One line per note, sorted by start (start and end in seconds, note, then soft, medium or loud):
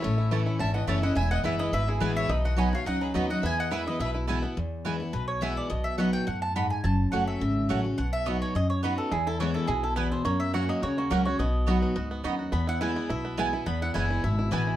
0.00 0.46 A1 loud
0.00 0.43 C#4 medium
0.00 0.18 E4 medium
0.00 0.29 C#5 medium
0.00 0.29 E5 medium
0.04 0.58 A2 loud
0.18 0.45 E4 medium
0.31 0.59 E3 medium
0.31 0.72 E3 medium
0.31 0.41 A3 medium
0.31 0.59 A3 medium
0.31 0.59 C#4 medium
0.31 0.41 E4 medium
0.31 0.60 E4 medium
0.31 0.41 C#5 medium
0.31 0.42 A5 medium
0.46 0.86 E4 medium
0.59 0.84 G#1 medium
0.59 1.14 E2 medium
0.59 0.87 C#4 medium
0.59 0.74 E5 medium
0.59 0.74 A5 loud
0.74 1.14 E3 medium
0.74 0.87 D#5 medium
0.74 0.87 F#5 medium
0.87 1.12 F#1 medium
0.87 1.02 E3 medium
0.87 0.97 A3 medium
0.87 1.03 A3 medium
0.87 1.17 C#4 medium
0.87 1.03 C#4 medium
0.87 0.98 E4 medium
0.87 1.01 E4 loud
0.87 1.02 C#5 medium
0.87 0.98 C#5 loud
0.87 1.03 E5 medium
0.87 0.98 A5 loud
1.02 1.16 C#4 medium
1.02 1.15 E4 medium
1.02 1.15 D#5 medium
1.02 1.16 F#5 medium
1.15 1.38 E1 medium
1.15 1.70 E2 medium
1.15 1.43 E4 medium
1.15 1.29 E5 medium
1.15 1.31 G#5 loud
1.30 2.71 B3 medium
1.30 1.43 D#5 medium
1.30 1.44 F#5 loud
1.43 1.69 F#1 medium
1.43 1.71 E3 medium
1.43 1.72 G#3 medium
1.43 1.54 B3 medium
1.43 1.72 B3 medium
1.43 1.59 E4 medium
1.43 1.54 E4 loud
1.43 1.72 E4 medium
1.43 1.58 B4 medium
1.43 1.54 B4 loud
1.43 1.60 E5 medium
1.43 1.55 G#5 loud
1.58 1.72 E4 medium
1.58 1.71 B4 medium
1.58 1.73 D#5 loud
1.72 1.97 G#1 medium
1.72 2.27 B2 medium
1.72 1.87 E4 medium
1.72 1.87 B4 medium
1.72 1.88 E5 loud
1.88 2.01 E4 medium
1.88 2.00 E4 medium
1.88 2.01 G#4 medium
2.00 2.25 A1 medium
2.00 2.28 E3 medium
2.00 2.28 G#3 loud
2.00 2.11 B3 medium
2.00 2.29 B3 medium
2.00 2.11 E4 medium
2.00 2.15 E4 medium
2.00 2.29 E4 loud
2.00 2.16 G#4 medium
2.00 2.16 B4 medium
2.00 2.11 B4 loud
2.00 2.11 G#5 loud
2.16 2.29 E4 medium
2.16 2.29 C#5 loud
2.16 2.29 E5 loud
2.29 2.72 B1 medium
2.29 2.84 B2 loud
2.29 2.70 D#4 medium
2.29 2.43 B4 medium
2.29 2.44 D#5 medium
2.44 2.72 F#4 medium
2.44 2.56 D#5 medium
2.44 2.58 F#5 medium
2.57 2.72 F#3 medium
2.57 2.99 F#3 medium
2.57 2.67 B3 medium
2.57 2.73 B3 medium
2.57 2.73 D#4 loud
2.57 2.67 F#4 loud
2.57 2.71 F#4 medium
2.57 2.72 D#5 medium
2.57 2.68 D#5 loud
2.57 2.73 G#5 medium
2.57 2.68 B5 loud
2.73 2.87 D#4 medium
2.73 2.86 F#4 medium
2.73 3.12 F#4 medium
2.73 2.85 C#5 medium
2.73 2.87 F5 loud
2.86 3.11 C#2 medium
2.86 3.41 F#2 loud
2.86 3.14 D#4 medium
2.86 3.00 D#5 medium
2.86 3.02 F#5 loud
3.01 3.41 F#3 medium
3.01 3.14 G#4 medium
3.01 3.14 B4 medium
3.14 3.39 D#2 medium
3.14 3.29 F#3 medium
3.14 3.24 B3 medium
3.14 3.30 B3 medium
3.14 3.43 D#4 medium
3.14 3.30 D#4 medium
3.14 3.24 F#4 medium
3.14 3.28 F#4 medium
3.14 3.29 B4 medium
3.14 3.30 D#5 medium
3.14 3.25 D#5 loud
3.14 3.25 B5 loud
3.29 3.43 D#4 soft
3.29 3.43 F#4 medium
3.29 3.41 D#5 medium
3.29 3.43 F#5 medium
3.42 3.97 E2 medium
3.42 3.86 E2 medium
3.42 3.84 B3 medium
3.42 3.57 E5 medium
3.42 3.59 G#5 loud
3.58 3.71 D#5 medium
3.58 3.72 F#5 loud
3.71 3.86 E3 medium
3.71 3.86 G#3 medium
3.71 3.81 B3 medium
3.71 3.87 B3 medium
3.71 3.81 E4 medium
3.71 3.86 E4 medium
3.71 3.86 B4 medium
3.71 3.81 B4 loud
3.71 3.87 E5 medium
3.71 3.81 G#5 medium
3.87 4.01 B3 medium
3.87 3.98 E4 medium
3.87 4.00 E4 medium
3.87 4.00 B4 medium
3.87 4.00 D#5 medium
4.00 4.43 B1 medium
4.00 4.55 B2 medium
4.00 4.13 E4 medium
4.00 4.15 B4 medium
4.00 4.10 E5 medium
4.15 4.27 E4 medium
4.27 4.43 E3 medium
4.27 4.44 G#3 medium
4.27 4.38 B3 medium
4.27 4.44 B3 medium
4.27 4.57 E4 medium
4.27 4.38 E4 medium
4.27 4.42 E4 medium
4.27 4.38 B4 loud
4.27 4.38 G#5 loud
4.42 4.56 B3 medium
4.42 4.57 B3 medium
4.42 4.56 E4 medium
4.57 5.11 E2 medium
4.57 5.00 E2 loud
4.85 5.00 E3 medium
4.85 5.00 G#3 medium
4.85 4.95 B3 medium
4.85 5.01 B3 medium
4.85 4.95 E4 medium
4.85 4.99 E4 medium
4.85 4.95 B4 loud
4.85 4.95 G#5 loud
5.00 5.14 B3 soft
5.00 5.13 E4 medium
5.13 5.57 B1 medium
5.13 5.68 B2 medium
5.13 5.27 B4 medium
5.28 5.41 C#5 medium
5.41 5.69 E3 medium
5.41 5.69 G#3 medium
5.41 5.52 B3 medium
5.41 5.70 B3 medium
5.41 5.52 E4 loud
5.41 5.70 E4 loud
5.41 5.52 B4 loud
5.41 5.57 E5 medium
5.41 5.52 G#5 loud
5.57 5.70 D5 medium
5.70 6.14 B1 medium
5.70 6.25 B2 loud
5.70 5.85 D#5 medium
5.84 5.98 E5 medium
5.98 6.26 F#3 medium
5.98 6.26 B3 medium
5.98 6.09 B3 medium
5.98 6.26 D#4 medium
5.98 6.09 F#4 medium
5.98 6.27 F#4 medium
5.98 6.09 D#5 medium
5.98 6.13 F#5 medium
5.98 6.09 B5 loud
6.13 6.27 G5 loud
6.27 6.71 F#2 medium
6.27 6.54 A2 medium
6.27 6.42 F#5 medium
6.42 6.55 A5 loud
6.56 6.83 G#2 medium
6.56 6.66 B3 medium
6.56 6.66 F#4 loud
6.56 6.66 D#5 loud
6.56 6.70 B5 medium
6.56 6.66 B5 loud
6.70 6.83 G#5 medium
6.84 7.06 F#1 loud
6.84 7.39 F#2 medium
6.84 7.11 A5 medium
7.12 7.37 F#1 medium
7.12 7.40 F#3 medium
7.12 7.22 A3 medium
7.12 7.40 A3 medium
7.12 7.41 C#4 medium
7.12 7.23 F#4 loud
7.12 7.41 F#4 loud
7.12 7.23 C#5 medium
7.12 7.27 F#5 medium
7.12 7.23 F#5 loud
7.28 7.67 E5 medium
7.41 7.66 G#1 medium
7.41 7.96 C#3 loud
7.69 7.94 A1 medium
7.69 7.84 F#3 medium
7.69 7.79 A3 medium
7.69 7.85 A3 medium
7.69 7.85 C#4 loud
7.69 7.79 F#4 loud
7.69 7.83 F#4 loud
7.69 7.80 C#5 loud
7.69 7.80 F#5 loud
7.84 7.98 C#4 medium
7.84 7.97 F#4 medium
7.98 8.41 B1 loud
7.98 8.53 B2 medium
7.98 8.12 F#5 medium
8.13 8.26 E5 loud
8.26 8.54 F#3 medium
8.26 8.36 B3 medium
8.26 8.54 B3 medium
8.26 8.54 D#4 medium
8.26 8.36 F#4 medium
8.26 8.55 F#4 medium
8.26 8.41 D#5 medium
8.26 8.36 D#5 medium
8.26 8.36 B5 medium
8.42 8.55 C#5 medium
8.55 9.09 F#2 medium
8.55 8.98 F#2 medium
8.55 8.69 D#5 loud
8.70 8.83 C#5 medium
8.83 9.10 F#3 medium
8.83 8.93 B3 medium
8.83 9.11 B3 medium
8.83 9.11 D#4 medium
8.83 8.93 F#4 loud
8.83 9.12 F#4 loud
8.83 8.97 B4 medium
8.83 8.93 D#5 loud
8.83 8.93 B5 medium
8.98 9.11 A4 medium
9.12 9.55 E2 loud
9.12 9.66 E2 medium
9.12 9.25 E4 medium
9.12 9.27 G#4 medium
9.27 9.54 E4 medium
9.27 9.40 A4 medium
9.40 9.81 E3 medium
9.40 9.67 E3 medium
9.40 9.68 G#3 medium
9.40 9.50 B3 medium
9.40 9.68 B3 medium
9.40 9.50 E4 medium
9.40 9.69 E4 loud
9.40 9.50 B4 medium
9.40 9.54 C#5 medium
9.40 9.50 G#5 medium
9.54 9.67 E4 medium
9.54 9.68 A4 medium
9.67 10.11 B1 medium
9.67 10.23 B2 loud
9.67 9.82 E4 medium
9.67 9.83 G#4 medium
9.83 10.10 E4 medium
9.83 9.96 A4 medium
9.96 10.24 E2 medium
9.96 10.25 B3 medium
9.96 10.06 B3 medium
9.96 10.07 E4 loud
9.96 10.11 B4 medium
9.96 10.07 B4 loud
9.96 10.07 G#5 loud
10.11 10.25 E4 medium
10.11 10.24 C5 medium
10.25 10.68 F#2 medium
10.25 10.80 F#2 loud
10.25 10.66 A#3 medium
10.25 10.40 C#5 medium
10.40 10.53 E5 loud
10.53 10.81 F#3 medium
10.53 10.63 A#3 medium
10.53 10.82 A#3 medium
10.53 10.82 C#4 medium
10.53 10.81 F#4 medium
10.53 10.64 F#4 medium
10.53 10.82 F#4 medium
10.53 10.64 C#5 medium
10.53 10.69 F#5 loud
10.53 10.64 F#5 loud
10.69 10.97 A#3 medium
10.69 10.82 D#5 medium
10.82 11.06 D#2 medium
10.82 11.37 C#3 medium
10.82 11.23 F#4 medium
10.82 10.97 C#5 medium
10.98 11.37 A#3 medium
10.98 11.11 F#4 medium
11.10 11.35 C#2 medium
11.10 11.25 F#3 medium
11.10 11.20 A#3 loud
11.10 11.26 A#3 loud
11.10 11.39 C#4 medium
11.10 11.26 C#4 loud
11.10 11.20 F#4 loud
11.10 11.25 F#4 loud
11.10 11.25 A#4 medium
11.10 11.21 C#5 loud
11.10 11.21 F#5 loud
11.25 11.40 C#4 medium
11.25 11.39 F#4 medium
11.25 11.40 F#4 medium
11.25 11.39 C#5 medium
11.39 11.82 B1 loud
11.39 11.94 B2 medium
11.39 11.82 B3 medium
11.39 12.20 D#5 medium
11.67 11.95 F#3 loud
11.67 11.77 B3 medium
11.67 11.95 B3 medium
11.67 11.95 D#4 medium
11.67 11.77 F#4 loud
11.67 11.95 F#4 medium
11.67 11.96 F#4 loud
11.67 11.77 D#5 medium
11.67 11.77 B5 medium
11.82 12.11 B3 medium
11.96 12.20 C#2 medium
11.96 12.23 G#2 loud
11.96 12.37 F#4 medium
12.11 12.52 B3 medium
12.24 12.48 D#2 medium
12.24 12.52 F#2 medium
12.24 12.34 B3 medium
12.24 12.53 D#4 medium
12.24 12.34 F#4 loud
12.24 12.34 D#5 loud
12.24 12.34 B5 loud
12.39 12.53 F#4 medium
12.52 12.96 E2 medium
12.52 13.07 E2 medium
12.52 12.93 B3 medium
12.52 12.67 B5 medium
12.67 12.80 E4 medium
12.67 12.81 F#5 loud
12.81 13.08 E3 medium
12.81 13.09 G#3 medium
12.81 12.91 B3 medium
12.81 13.09 B3 loud
12.81 13.08 E4 medium
12.81 12.91 E4 medium
12.81 13.09 E4 loud
12.81 12.91 B4 medium
12.81 13.08 G#5 medium
12.81 12.91 G#5 loud
12.96 13.24 B3 medium
13.10 13.53 B1 medium
13.10 13.64 B2 medium
13.10 13.37 E4 medium
13.10 13.36 E5 medium
13.25 13.64 B3 medium
13.37 13.52 E3 medium
13.37 13.53 G#3 medium
13.37 13.48 B3 loud
13.37 13.53 B3 medium
13.37 13.52 E4 medium
13.37 13.48 E4 loud
13.37 13.52 E4 medium
13.37 13.48 B4 loud
13.37 13.48 G#5 loud
13.37 13.66 G#5 medium
13.53 13.67 B3 medium
13.53 13.66 E4 medium
13.53 13.67 E4 medium
13.66 14.21 E2 medium
13.66 13.88 E2 loud
13.66 14.07 B3 medium
13.66 13.81 B5 medium
13.82 13.94 E4 medium
13.82 13.94 F#5 loud
13.94 14.19 F#1 medium
13.94 14.22 E3 medium
13.94 14.22 G#3 medium
13.94 14.04 B3 medium
13.94 14.22 B3 medium
13.94 14.05 E4 medium
13.94 14.09 E4 medium
13.94 14.23 E4 loud
13.94 14.05 B4 loud
13.94 14.21 G#5 medium
13.94 14.05 G#5 loud
14.11 14.23 E4 medium
14.24 14.48 G#1 medium
14.24 14.76 B2 medium
14.24 14.38 E4 medium
14.24 14.50 E5 medium
14.39 14.66 E4 medium
14.51 14.76 A1 medium
14.51 14.76 E3 medium
14.51 14.76 G#3 medium
14.51 14.61 B3 medium
14.51 14.76 B3 medium
14.51 14.76 B3 loud
14.51 14.62 E4 loud
14.51 14.76 E4 medium
14.51 14.62 B4 loud
14.51 14.76 G#5 medium
14.51 14.62 G#5 loud
14.67 14.76 E4 medium